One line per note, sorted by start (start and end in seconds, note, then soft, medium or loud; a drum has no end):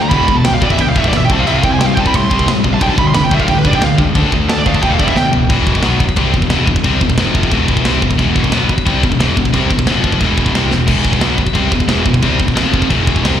0.02 0.09 A#5 loud
0.09 0.25 E1 loud
0.09 0.27 E2 medium
0.09 0.27 B2 loud
0.09 0.27 E3 loud
0.09 0.34 B5 loud
0.09 kick loud
0.09 crash medium
0.28 0.42 E1 medium
0.28 0.43 E2 medium
0.28 0.43 B2 medium
0.28 kick loud
0.37 0.45 A5 medium
0.44 0.59 B1 loud
0.44 0.60 E2 medium
0.44 0.60 B2 medium
0.44 0.53 G5 medium
0.44 snare loud
0.44 crash medium
0.54 0.62 F5 medium
0.61 0.76 E1 loud
0.61 0.77 E2 medium
0.61 0.78 B2 medium
0.61 0.78 E3 medium
0.61 0.71 D5 loud
0.61 kick medium
0.70 0.80 E5 loud
0.70 kick medium
0.78 0.93 D2 loud
0.78 0.93 E2 medium
0.78 0.94 B2 loud
0.78 0.88 G5 loud
0.78 kick loud
0.78 crash medium
0.89 0.96 F5 medium
0.95 1.10 E1 loud
0.95 1.11 E2 loud
0.95 1.12 B2 medium
0.95 1.12 E3 loud
0.95 1.05 E5 loud
0.95 kick loud
1.04 1.16 D5 medium
1.04 kick medium
1.12 1.26 G1 medium
1.12 1.28 E2 medium
1.12 1.28 B2 medium
1.12 snare loud
1.12 crash medium
1.16 1.22 E5 loud
1.25 1.31 G5 loud
1.29 1.43 C2 medium
1.29 1.45 C3 medium
1.29 1.45 G3 loud
1.29 1.46 C4 loud
1.29 1.39 A5 loud
1.29 kick loud
1.40 1.47 F5 loud
1.45 1.59 C2 loud
1.45 1.62 C3 medium
1.45 1.62 G3 medium
1.45 1.63 C4 loud
1.45 1.55 E5 medium
1.45 crash medium
1.56 1.63 F5 medium
1.63 1.77 C2 medium
1.63 1.78 C3 medium
1.63 1.78 G3 medium
1.63 1.71 G5 medium
1.63 kick loud
1.72 1.80 G#5 medium
1.78 1.93 C2 loud
1.78 1.95 C3 medium
1.78 1.95 G3 loud
1.78 1.85 G5 loud
1.78 snare loud
1.78 crash medium
1.87 1.94 F5 medium
1.94 2.11 C2 loud
1.94 2.12 C3 medium
1.94 2.13 G3 loud
1.94 2.13 C4 loud
1.94 1.98 G5 medium
1.94 kick medium
2.00 2.06 A5 loud
2.06 2.15 B5 loud
2.06 kick medium
2.14 2.27 A2 loud
2.14 2.29 C3 medium
2.14 2.29 G3 loud
2.14 2.48 C6 loud
2.14 kick loud
2.14 crash medium
2.30 2.44 C2 loud
2.30 2.46 C3 loud
2.30 2.46 G3 loud
2.30 2.46 C4 loud
2.30 kick medium
2.39 kick medium
2.46 2.60 A2 medium
2.46 2.62 C3 medium
2.46 2.62 G3 medium
2.46 snare loud
2.46 crash medium
2.64 2.78 A#1 medium
2.64 2.79 C3 medium
2.64 2.79 G3 medium
2.64 kick medium
2.74 2.81 A5 loud
2.80 2.95 B1 loud
2.80 2.95 G2 loud
2.80 2.96 D3 loud
2.80 2.96 G3 loud
2.80 2.89 G5 medium
2.80 kick loud
2.80 crash medium
2.90 2.98 A5 loud
2.96 3.11 B1 loud
2.96 3.12 G2 medium
2.96 3.12 D3 medium
2.96 3.06 B5 loud
2.96 kick loud
3.07 3.14 C6 loud
3.14 3.28 F1 loud
3.14 3.29 G2 medium
3.14 3.29 D3 loud
3.14 3.23 B5 loud
3.14 snare loud
3.14 crash medium
3.24 3.31 G5 medium
3.31 3.45 B1 loud
3.31 3.47 G2 medium
3.31 3.47 D3 loud
3.31 3.47 G3 loud
3.31 3.41 E5 loud
3.31 kick medium
3.40 3.48 F5 loud
3.40 kick medium
3.48 3.62 A1 loud
3.48 3.63 G2 medium
3.48 3.64 D3 medium
3.48 3.57 G5 loud
3.48 kick loud
3.48 crash medium
3.58 3.65 B4 medium
3.65 3.79 B1 medium
3.65 3.80 G2 loud
3.65 3.81 D3 loud
3.65 3.81 G3 loud
3.65 3.74 D5 loud
3.65 kick loud
3.73 3.82 G5 loud
3.73 kick medium
3.81 3.95 D2 medium
3.81 3.97 G2 medium
3.81 3.97 D3 medium
3.81 3.93 F5 loud
3.81 snare loud
3.81 crash medium
3.98 4.12 C#2 medium
3.98 4.13 G2 medium
3.98 4.14 D3 medium
3.98 kick medium
4.15 4.29 D2 loud
4.15 4.31 D3 medium
4.15 4.32 A3 loud
4.15 4.32 D4 loud
4.15 kick loud
4.15 crash medium
4.32 4.46 D2 loud
4.32 4.47 D3 medium
4.32 4.48 A3 medium
4.32 kick loud
4.48 4.62 D2 loud
4.48 4.64 D3 medium
4.48 4.64 A3 medium
4.48 4.57 A5 loud
4.48 snare loud
4.48 crash medium
4.58 4.66 D5 medium
4.66 4.79 D2 loud
4.66 4.81 D3 medium
4.66 4.82 A3 loud
4.66 4.82 D4 medium
4.66 4.75 F5 loud
4.66 kick loud
4.74 4.83 A5 loud
4.74 kick medium
4.82 4.96 E1 medium
4.82 4.98 E2 loud
4.82 4.98 B2 loud
4.82 4.98 E3 loud
4.82 4.91 G5 medium
4.82 kick loud
4.82 crash medium
4.90 4.99 F5 medium
4.99 5.13 E1 medium
4.99 5.15 E2 medium
4.99 5.16 B2 medium
4.99 5.16 E3 loud
4.99 5.07 D5 loud
4.99 kick loud
5.08 5.16 E5 loud
5.08 kick medium
5.16 5.30 D2 medium
5.16 5.31 E2 medium
5.16 5.32 B2 medium
5.16 5.26 G5 loud
5.16 snare medium
5.33 5.47 E1 medium
5.33 5.48 E2 medium
5.33 5.48 B2 medium
5.33 floor tom loud
5.49 5.81 E1 medium
5.49 5.83 E2 medium
5.49 5.82 B2 medium
5.49 5.83 E3 loud
5.49 kick loud
5.49 china medium
5.67 kick medium
5.75 kick medium
5.82 6.00 B1 loud
5.82 6.00 B2 loud
5.82 6.00 F#3 loud
5.82 6.00 B3 loud
5.82 snare loud
5.82 china medium
6.00 muted distorted electric guitar stroke medium
6.00 muted picked electric bass stroke soft
6.00 kick loud
6.09 kick medium
6.16 6.32 C2 loud
6.16 6.33 C3 medium
6.16 6.33 G3 loud
6.16 6.34 C4 loud
6.16 kick loud
6.16 china medium
6.33 6.49 E1 medium
6.33 6.47 E2 medium
6.33 6.47 B2 medium
6.33 kick loud
6.42 kick medium
6.50 6.67 E1 medium
6.50 6.66 E2 medium
6.50 6.66 B2 medium
6.50 6.68 E3 loud
6.50 snare loud
6.50 china medium
6.67 6.83 E1 medium
6.67 6.81 E2 medium
6.67 6.81 B2 medium
6.67 kick medium
6.76 kick medium
6.84 7.00 C2 loud
6.84 7.00 C3 medium
6.84 7.01 G3 loud
6.84 7.01 C4 loud
6.84 kick loud
6.84 china medium
7.01 7.17 E1 medium
7.01 7.15 E2 medium
7.01 7.15 B2 medium
7.01 kick medium
7.10 kick loud
7.18 7.50 F1 loud
7.18 7.51 F2 loud
7.18 7.51 C3 loud
7.18 7.51 F3 loud
7.18 snare loud
7.18 china medium
7.35 kick loud
7.43 kick medium
7.51 7.83 E1 loud
7.51 7.85 E2 loud
7.51 7.85 B2 loud
7.51 7.85 E3 loud
7.51 kick loud
7.51 china medium
7.68 kick loud
7.77 kick medium
7.85 8.01 C2 loud
7.85 8.01 C3 medium
7.85 8.02 G3 medium
7.85 8.02 C4 loud
7.85 snare loud
7.85 china medium
8.02 8.18 E1 medium
8.02 8.15 E2 medium
8.02 8.15 B2 medium
8.02 kick medium
8.11 kick medium
8.18 8.50 E1 medium
8.18 8.52 E2 medium
8.18 8.50 B2 loud
8.18 8.51 E3 loud
8.18 kick loud
8.18 china medium
8.36 kick loud
8.44 kick medium
8.51 8.69 B1 loud
8.51 8.68 B2 loud
8.51 8.68 F#3 loud
8.51 8.69 B3 loud
8.51 snare loud
8.51 china medium
8.69 muted distorted electric guitar stroke medium
8.69 muted picked electric bass stroke soft
8.69 kick loud
8.78 kick medium
8.86 9.02 C2 loud
8.86 9.02 C3 medium
8.86 9.03 G3 loud
8.86 9.03 C4 loud
8.86 kick loud
8.86 china medium
9.03 9.19 E1 medium
9.03 9.16 E2 medium
9.03 9.16 B2 medium
9.03 kick loud
9.12 kick medium
9.19 9.36 E1 loud
9.19 9.35 E2 loud
9.19 9.35 B2 loud
9.19 9.36 E3 loud
9.19 snare loud
9.19 china medium
9.36 9.52 E1 medium
9.36 9.50 E2 medium
9.36 9.50 B2 medium
9.36 kick medium
9.45 kick medium
9.53 9.69 C2 loud
9.53 9.69 C3 medium
9.53 9.70 G3 loud
9.53 9.70 C4 loud
9.53 kick loud
9.53 china medium
9.70 9.86 E1 medium
9.70 9.87 E2 medium
9.70 9.88 B2 medium
9.70 kick medium
9.79 kick loud
9.87 10.19 F1 loud
9.87 10.19 F2 loud
9.87 10.20 C3 loud
9.87 10.21 F3 loud
9.87 snare loud
9.87 china medium
10.04 kick medium
10.12 kick medium
10.20 10.52 E1 loud
10.20 10.53 E2 medium
10.20 10.54 B2 loud
10.20 10.54 E3 loud
10.20 kick loud
10.20 china medium
10.38 kick medium
10.46 kick medium
10.54 10.70 C2 loud
10.54 10.71 C3 medium
10.54 10.71 G3 loud
10.54 10.71 C4 loud
10.54 snare loud
10.54 china medium
10.71 10.87 E1 medium
10.71 10.85 E2 medium
10.71 10.85 B2 medium
10.71 snare medium
10.87 11.19 E1 loud
10.87 11.20 E2 loud
10.87 11.19 B2 loud
10.87 11.20 E3 loud
10.87 kick loud
10.87 china medium
10.87 crash loud
11.05 kick medium
11.13 kick loud
11.20 11.37 B1 loud
11.20 11.37 B2 loud
11.20 11.38 F#3 loud
11.20 11.38 B3 loud
11.20 snare loud
11.20 china medium
11.38 muted picked electric bass stroke soft
11.38 muted distorted electric guitar stroke medium
11.38 kick medium
11.47 kick medium
11.54 11.71 C2 loud
11.54 11.71 C3 medium
11.54 11.71 G3 loud
11.54 11.71 C4 loud
11.54 kick loud
11.54 china medium
11.72 11.88 E1 medium
11.72 11.85 E2 medium
11.72 11.86 B2 medium
11.72 kick loud
11.80 kick medium
11.88 12.04 E1 medium
11.88 12.04 E2 medium
11.88 12.04 B2 loud
11.88 12.05 E3 loud
11.88 snare loud
11.88 china medium
12.05 12.21 E1 medium
12.05 12.19 E2 medium
12.05 12.19 B2 medium
12.05 kick medium
12.14 kick medium
12.22 12.38 C2 loud
12.22 12.39 C3 medium
12.22 12.39 G3 loud
12.22 12.39 C4 loud
12.22 kick loud
12.22 china medium
12.40 12.55 E1 medium
12.40 12.55 E2 medium
12.40 12.56 B2 medium
12.40 kick medium
12.48 kick medium
12.55 12.87 F1 loud
12.55 12.88 F2 loud
12.55 12.89 C3 loud
12.55 12.89 F3 loud
12.55 snare loud
12.55 china medium
12.74 kick medium
12.82 kick medium
12.89 13.22 E1 loud
12.89 13.23 E2 loud
12.89 13.23 B2 loud
12.89 13.23 E3 loud
12.89 kick loud
12.89 china medium
13.07 kick medium
13.16 kick medium
13.23 13.39 C2 loud
13.23 13.40 C3 medium
13.23 13.40 G3 loud
13.23 13.40 C4 loud
13.23 snare loud
13.23 china medium